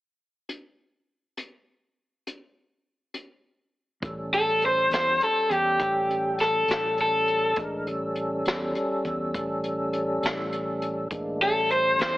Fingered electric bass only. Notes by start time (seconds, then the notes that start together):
4.02 A1
4.90 E2
5.50 E2
5.80 A1
6.68 A1
7.57 A1
8.46 E2
9.05 E2
9.35 A1
10.23 A1
11.10 A1
11.99 E2